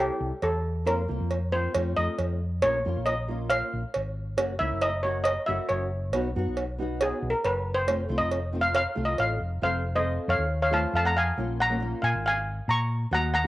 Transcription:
0.00 0.29 G3 medium
0.00 0.30 C4 medium
0.00 0.30 E4 medium
0.00 0.19 G4 medium
0.20 0.30 C2 medium
0.42 0.87 E2 medium
0.42 0.88 A4 medium
0.42 cowbell medium
0.85 1.05 F2 loud
0.85 1.00 A#3 medium
0.85 1.00 C4 medium
0.85 1.00 F4 medium
0.85 1.55 A#4 medium
0.85 cowbell medium
1.08 1.19 C2 medium
1.08 1.35 A#3 medium
1.08 1.35 C4 medium
1.08 1.35 F4 medium
1.20 1.66 F2 medium
1.31 cowbell medium
1.52 1.74 A#3 medium
1.52 1.74 C4 medium
1.52 1.74 F4 medium
1.52 1.98 C5 medium
1.74 1.93 F2 loud
1.74 1.92 A3 medium
1.74 1.93 C4 medium
1.74 1.93 F4 medium
1.74 cowbell medium
1.96 2.07 F2 medium
1.96 2.36 A3 medium
1.96 2.36 C4 medium
1.96 2.36 F4 medium
1.96 2.65 D#5 medium
2.18 2.65 F2 medium
2.18 cowbell medium
2.62 2.82 A#1 loud
2.62 2.76 A#3 medium
2.62 2.76 C#4 medium
2.62 2.76 F4 medium
2.62 3.08 C#5 loud
2.62 cowbell medium
2.85 2.95 F2 medium
2.85 3.11 A#3 medium
2.85 3.11 C#4 medium
2.85 3.12 F4 medium
2.97 3.61 A#1 medium
3.06 3.51 D#5 loud
3.06 cowbell medium
3.28 3.81 A#3 medium
3.28 3.81 C#4 medium
3.28 3.81 F4 medium
3.50 3.91 F5 loud
3.50 cowbell loud
3.73 3.83 A#1 medium
3.94 4.39 G#1 medium
3.94 cowbell medium
4.37 4.57 F#1 medium
4.37 4.51 A#3 medium
4.37 4.51 C#4 medium
4.37 4.51 F#4 medium
4.37 cowbell loud
4.59 4.70 C#2 medium
4.59 4.86 A#3 medium
4.59 4.86 C#4 medium
4.59 4.86 E4 medium
4.59 4.82 E5 loud
4.72 5.36 F#1 medium
4.82 5.02 D#5 loud
4.82 cowbell medium
5.03 5.30 A#3 medium
5.03 5.31 C#4 medium
5.03 5.30 F#4 medium
5.03 5.26 C#5 medium
5.24 5.47 D#5 loud
5.24 cowbell loud
5.46 5.58 F#1 medium
5.46 5.87 A#3 medium
5.46 5.87 C#4 medium
5.46 5.87 F#4 medium
5.46 5.70 E5 medium
5.69 6.14 F#1 medium
5.69 5.89 C#5 medium
5.69 cowbell medium
6.13 6.32 B1 loud
6.13 6.27 B3 medium
6.13 6.26 D#4 medium
6.13 6.27 F#4 loud
6.13 cowbell medium
6.36 6.45 F#2 medium
6.36 6.62 B3 medium
6.36 6.62 D#4 medium
6.36 6.62 F#4 loud
6.47 7.11 B1 medium
6.57 cowbell medium
6.78 7.31 B3 medium
6.78 7.32 D#4 medium
6.78 7.32 F#4 medium
7.01 7.31 G#4 medium
7.01 cowbell medium
7.22 7.32 B1 medium
7.30 7.45 A#4 medium
7.44 7.87 F#1 medium
7.44 7.75 B4 medium
7.44 cowbell medium
7.74 8.19 C5 medium
7.86 8.06 F1 medium
7.86 8.01 A3 medium
7.86 8.01 C4 medium
7.86 8.01 F4 medium
7.86 cowbell medium
8.09 8.19 C2 medium
8.09 8.36 A3 medium
8.09 8.36 C4 medium
8.09 8.36 F4 medium
8.18 8.85 F1 medium
8.18 8.58 D#5 loud
8.32 cowbell medium
8.52 8.79 A3 medium
8.52 8.79 C4 medium
8.52 8.80 F4 medium
8.61 8.74 F5 loud
8.75 9.05 F5 loud
8.75 cowbell medium
8.95 9.17 C2 medium
8.95 9.36 A3 medium
8.95 9.36 C4 medium
8.95 9.36 F4 medium
9.05 9.18 D#5 medium
9.18 9.38 A1 medium
9.18 9.40 F5 medium
9.18 cowbell medium
9.40 9.60 F1 medium
9.62 10.17 F1 loud
9.62 9.82 A3 medium
9.62 9.82 C4 medium
9.62 9.82 F4 medium
9.62 9.94 C5 medium
9.62 9.97 F5 medium
9.95 10.41 A3 medium
9.95 10.41 C4 medium
9.95 10.41 F4 medium
9.95 10.26 C5 medium
9.95 10.26 D#5 medium
10.28 10.38 F2 medium
10.28 10.59 C#5 medium
10.28 10.61 F5 medium
10.38 10.84 D#2 medium
10.62 10.72 C#5 medium
10.62 10.72 F5 medium
10.71 11.10 A3 medium
10.71 11.11 C4 medium
10.71 11.11 F4 medium
10.71 10.93 F5 medium
10.71 10.93 A5 medium
10.93 11.30 F2 loud
10.93 11.05 F5 medium
10.93 11.06 A5 medium
11.05 11.15 F#5 medium
11.05 11.15 A#5 medium
11.17 11.56 F5 medium
11.17 11.61 G#5 loud
11.37 11.92 A#1 loud
11.37 11.57 A#3 medium
11.37 11.57 C#4 medium
11.37 11.57 F4 medium
11.60 12.00 F#5 medium
11.60 12.05 A#5 loud
11.70 11.76 A#3 medium
11.70 11.76 C#4 medium
11.70 11.77 F4 medium
11.80 12.33 A#3 medium
11.80 12.33 C#4 medium
11.80 12.33 F4 medium
12.02 12.12 A#2 medium
12.02 12.22 F5 medium
12.02 12.26 G#5 loud
12.14 12.59 G#1 medium
12.26 12.66 F5 medium
12.26 12.67 G#5 loud
12.68 13.05 A#2 loud
12.68 13.09 A#5 medium
12.68 13.14 C#6 loud
13.11 13.47 D#2 loud
13.11 13.31 A#3 medium
13.11 13.31 D#4 medium
13.11 13.31 F#4 medium
13.11 13.32 F#5 medium
13.11 13.33 A#5 loud
13.34 13.47 F#5 medium
13.34 13.47 A#5 loud
13.44 13.47 A#3 medium

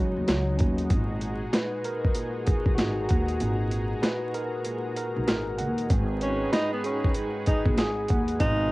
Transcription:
0.00 0.93 C#2 medium
0.00 0.87 C#3 medium
0.00 0.29 F#3 loud
0.00 5.87 G#3 medium
0.00 0.87 B3 medium
0.00 0.57 C#4 medium
0.00 5.87 D#4 medium
0.00 0.87 F#4 medium
0.00 0.91 C#5 medium
0.17 0.26 D#2 medium
0.28 0.61 C#2 loud
0.28 0.91 F#3 medium
0.28 snare loud
0.28 snare medium
0.28 closed hi-hat medium
0.57 0.86 D#2 medium
0.57 0.90 C#4 medium
0.57 kick loud
0.57 closed hi-hat medium
0.78 closed hi-hat medium
0.90 1.42 G#1 loud
0.90 2.14 A#2 medium
0.90 5.87 F#4 medium
0.90 5.87 G#4 medium
0.90 5.86 A#5 medium
0.90 kick loud
0.90 closed hi-hat medium
1.21 closed hi-hat medium
1.53 3.41 B4 medium
1.53 snare loud
1.53 snare medium
1.53 closed hi-hat loud
1.84 3.72 A#4 medium
1.84 closed hi-hat medium
2.05 kick medium
2.15 3.38 A#2 medium
2.15 closed hi-hat loud
2.46 4.34 G#4 medium
2.46 kick loud
2.46 closed hi-hat medium
2.66 2.76 B1 medium
2.66 kick loud
2.75 3.04 G#1 loud
2.75 4.64 F#4 loud
2.75 snare medium
2.75 closed hi-hat medium
2.79 snare loud
3.09 3.36 D#2 medium
3.09 4.97 F#5 medium
3.09 kick loud
3.09 closed hi-hat medium
3.28 closed hi-hat medium
3.40 3.92 G#1 loud
3.40 4.65 A#2 medium
3.40 closed hi-hat medium
3.71 closed hi-hat medium
4.02 5.90 B4 medium
4.02 snare loud
4.02 snare medium
4.02 closed hi-hat loud
4.34 4.96 A#4 loud
4.34 closed hi-hat medium
4.65 5.91 A#2 medium
4.65 closed hi-hat loud
4.96 5.26 A#4 medium
4.96 closed hi-hat medium
5.16 5.28 B1 medium
5.27 5.61 G#1 medium
5.27 5.90 A#4 medium
5.27 snare loud
5.27 snare medium
5.27 closed hi-hat medium
5.58 5.85 D#2 medium
5.58 5.90 F#5 medium
5.58 closed hi-hat medium
5.78 closed hi-hat medium
5.90 6.42 G#1 loud
5.90 7.15 G#2 loud
5.90 8.05 D#3 medium
5.90 8.38 G#3 medium
5.90 8.05 B3 medium
5.90 8.38 D#4 medium
5.90 8.38 F#4 medium
5.90 8.05 G#4 loud
5.90 8.38 G#4 medium
5.90 8.38 B4 medium
5.90 kick loud
5.90 closed hi-hat medium
6.21 6.50 C#4 medium
6.21 closed hi-hat medium
6.52 6.71 D#4 loud
6.52 8.40 B5 medium
6.52 snare loud
6.52 snare medium
6.52 closed hi-hat loud
6.73 6.83 B3 medium
6.84 7.13 C#4 medium
6.84 7.46 G#4 medium
6.84 closed hi-hat medium
7.04 kick loud
7.14 8.41 G#2 medium
7.14 closed hi-hat loud
7.46 7.64 D#4 medium
7.46 7.77 G#4 medium
7.46 kick medium
7.46 closed hi-hat medium
7.66 7.78 B1 loud
7.66 kick loud
7.78 8.04 G#1 medium
7.78 8.41 G#4 loud
7.78 snare loud
7.78 snare medium
7.78 closed hi-hat medium
8.08 8.36 D#2 medium
8.08 8.41 F#5 medium
8.08 kick loud
8.08 closed hi-hat medium
8.28 closed hi-hat medium
8.40 8.72 G#1 loud
8.40 8.72 B2 medium
8.40 8.72 G#3 medium
8.40 8.72 B3 medium
8.40 8.72 C#4 medium
8.40 8.72 D#4 loud
8.40 8.72 F4 medium
8.40 8.72 B4 medium
8.40 kick loud
8.40 closed hi-hat medium

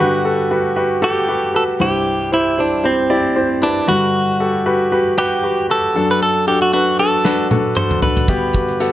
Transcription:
0.00 1.77 G2 soft
0.00 1.77 D3 soft
0.00 0.23 F#4 medium
0.00 1.00 F#4 medium
0.00 0.23 G4 medium
0.00 0.23 B4 medium
0.25 0.49 F#4 medium
0.25 0.49 G4 medium
0.25 0.49 A4 medium
0.51 0.75 F#4 medium
0.51 0.75 G4 medium
0.51 0.75 B4 medium
0.76 1.00 F#4 medium
0.76 1.00 G4 medium
0.76 1.00 B4 medium
1.02 1.26 F#4 medium
1.02 1.26 G4 medium
1.02 1.56 G4 medium
1.02 1.26 A4 medium
1.29 1.52 F#4 medium
1.29 1.53 G4 medium
1.29 1.52 B4 medium
1.54 1.78 F#4 medium
1.54 1.78 G4 medium
1.54 1.63 A4 medium
1.54 1.78 B4 medium
1.80 3.83 C2 soft
1.80 3.84 G2 soft
1.80 2.28 E4 medium
1.80 2.28 G4 medium
1.80 2.33 G4 medium
1.80 2.28 C5 medium
2.32 2.56 E4 medium
2.32 2.60 E4 medium
2.32 2.56 G4 medium
2.32 2.56 C5 medium
2.58 2.86 D4 medium
2.58 2.82 E4 medium
2.58 2.82 G4 soft
2.58 2.82 C5 medium
2.84 3.65 C4 medium
2.84 3.08 E4 medium
2.84 3.08 G4 medium
2.84 3.08 C5 medium
3.10 3.34 E4 medium
3.10 3.34 G4 medium
3.10 3.34 D5 medium
3.36 3.60 E4 medium
3.36 3.60 G4 medium
3.36 3.60 C5 medium
3.62 3.87 D4 medium
3.62 3.86 E4 medium
3.62 3.86 G4 medium
3.62 3.86 B4 medium
3.87 5.91 G2 soft
3.87 5.91 D3 soft
3.87 4.35 G3 medium
3.87 4.35 F#4 medium
3.87 5.14 F#4 medium
3.87 4.35 B4 medium
4.40 4.64 F#4 medium
4.40 4.64 G4 medium
4.40 4.64 A4 medium
4.66 4.89 F#4 medium
4.66 4.89 G4 medium
4.66 4.90 B4 medium
4.92 5.15 F#4 medium
4.92 5.16 G4 medium
4.92 5.15 B4 medium
5.18 5.41 F#4 medium
5.18 5.41 G4 medium
5.18 5.66 G4 medium
5.18 5.41 B4 medium
5.43 5.67 F#4 medium
5.43 5.67 G4 medium
5.43 5.67 B4 medium
5.70 5.93 F#4 medium
5.70 5.93 G4 medium
5.70 6.11 A4 medium
5.70 5.93 B4 medium
5.95 7.99 F#2 soft
5.95 7.99 F#3 soft
5.95 6.43 D4 medium
5.95 6.43 F#4 medium
5.95 6.43 A4 medium
6.11 6.21 B4 medium
6.23 6.46 A4 medium
6.47 6.71 D4 medium
6.47 6.71 F#4 medium
6.47 6.61 G4 medium
6.47 6.71 A4 medium
6.62 6.72 F#4 medium
6.73 6.97 D4 medium
6.73 6.97 F#4 soft
6.73 6.99 F#4 medium
6.73 6.97 B4 medium
6.99 7.23 D4 medium
6.99 7.23 F#4 soft
6.99 7.23 A4 medium
6.99 7.47 A4 medium
7.25 7.48 D4 medium
7.25 7.48 F#4 medium
7.25 7.48 B4 medium
7.25 snare soft
7.51 7.74 D4 medium
7.51 7.74 F#4 medium
7.51 7.75 A4 medium
7.51 high tom medium
7.77 8.01 D4 medium
7.77 8.01 F#4 medium
7.77 8.01 A4 medium
7.77 8.01 C5 medium
7.77 mid tom medium
7.91 mid tom medium
8.02 8.26 D4 medium
8.02 8.26 F#4 soft
8.02 8.26 A4 medium
8.02 8.92 B4 medium
8.02 floor tom medium
8.17 floor tom medium
8.28 8.92 G2 medium
8.28 8.92 D3 medium
8.28 8.52 B3 medium
8.28 8.52 F#4 medium
8.28 8.52 G4 medium
8.28 kick medium
8.28 closed hi-hat medium
8.53 8.78 B3 medium
8.53 8.78 F#4 soft
8.53 8.78 G4 medium
8.53 kick medium
8.53 closed hi-hat medium
8.68 closed hi-hat soft
8.80 8.92 B3 medium
8.80 8.92 F#4 medium
8.80 8.92 A4 medium
8.80 closed hi-hat medium

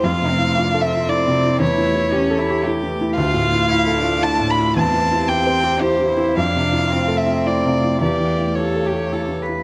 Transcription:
0.00 1.57 F2 medium
0.00 3.14 A3 medium
0.00 0.83 F5 medium
0.04 0.30 F4 medium
0.04 1.62 F4 medium
0.22 0.50 C3 soft
0.29 0.58 C4 medium
0.39 0.67 E4 soft
0.56 0.84 D4 soft
0.56 0.85 F4 soft
0.74 1.02 A4 soft
0.81 1.63 C4 medium
0.81 1.10 E5 medium
0.93 1.20 F4 soft
1.09 1.37 E4 soft
1.09 1.60 D5 medium
1.28 1.55 C3 soft
1.45 1.62 E4 soft
1.60 3.13 E2 medium
1.60 2.14 E4 medium
1.60 3.18 G4 medium
1.60 2.64 C#5 medium
1.78 2.06 E3 soft
1.95 2.23 E4 soft
2.12 2.40 C#4 medium
2.12 2.41 G4 medium
2.30 2.59 A4 medium
2.39 2.66 E4 medium
2.50 2.77 G4 soft
2.64 2.94 E4 soft
2.64 3.16 G4 medium
2.83 3.11 E3 soft
3.01 3.18 E4 soft
3.15 4.72 D2 medium
3.15 4.72 A3 medium
3.15 3.72 F4 medium
3.15 4.76 F4 medium
3.15 4.24 F5 medium
3.15 9.63 F5 medium
3.34 3.63 A2 soft
3.52 3.81 E4 soft
3.70 4.00 E4 medium
3.70 3.99 F4 soft
3.87 4.16 A4 soft
3.98 4.76 D4 medium
4.04 4.33 F4 soft
4.21 4.51 E4 medium
4.21 4.51 A5 medium
4.40 4.69 A2 soft
4.50 4.75 B5 medium
4.58 4.76 E4 soft
4.76 6.34 E2 medium
4.76 6.38 C4 medium
4.76 5.81 C4 medium
4.76 6.38 G4 medium
4.76 5.29 A5 medium
4.93 5.22 E3 soft
5.12 5.40 E4 soft
5.28 5.57 G4 soft
5.28 5.82 G5 medium
5.46 5.75 C5 soft
5.64 5.93 G4 soft
5.80 6.11 E4 soft
5.80 6.07 G4 medium
5.80 6.37 C5 medium
6.00 6.30 E3 soft
6.08 6.39 E4 medium
6.17 6.37 E4 soft
6.37 7.97 F2 medium
6.37 9.63 A3 medium
6.37 6.93 D4 medium
6.37 8.02 F4 medium
6.37 7.18 F5 medium
6.56 6.85 C3 soft
6.73 7.02 E4 soft
6.90 8.01 C4 medium
6.90 7.20 F4 soft
7.08 7.38 A4 soft
7.17 7.48 E5 medium
7.26 7.56 F4 soft
7.46 7.75 E4 soft
7.46 8.01 D5 medium
7.64 7.94 C3 soft
7.84 8.02 E4 soft
8.01 9.63 E2 soft
8.01 9.63 G4 medium
8.01 8.50 G4 soft
8.01 8.56 D5 medium
8.20 8.50 E3 soft
8.39 8.68 E4 soft
8.55 8.86 G4 soft
8.55 8.88 A4 soft
8.55 9.39 C#5 soft
8.76 9.05 A4 soft
8.86 9.14 G4 soft
8.92 9.22 G4 soft
9.12 9.42 E4 soft
9.12 9.43 A4 soft
9.28 9.59 E3 soft
9.42 9.63 B4 soft
9.49 9.63 E4 soft

